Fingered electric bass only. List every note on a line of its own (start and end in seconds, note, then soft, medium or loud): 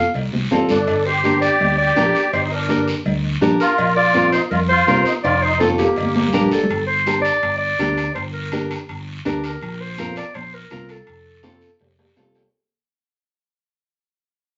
0.14 0.29 C2 medium
0.33 0.49 C2 medium
0.51 0.68 A1 medium
0.70 0.86 G1 medium
0.88 1.46 G1 loud
1.61 1.90 D2 medium
1.97 2.11 A#1 loud
2.33 2.91 G1 loud
3.06 3.35 D2 medium
3.42 3.57 A#1 medium
3.79 4.37 A#1 loud
4.51 4.80 F2 loud
4.88 5.02 C2 medium
5.24 5.82 F1 loud
5.97 6.26 G1 medium
6.34 6.48 A#1 loud
6.70 7.28 G1 loud
7.43 7.72 G1 loud
7.79 8.08 D2 loud
8.16 8.74 G1 loud
8.89 9.18 G1 medium
9.25 9.54 D2 loud
9.62 10.20 A#1 loud
10.35 10.64 A#1 medium
10.71 11.00 C2 loud
11.07 11.66 F1 loud
11.80 12.09 F1 medium
12.17 12.46 C2 medium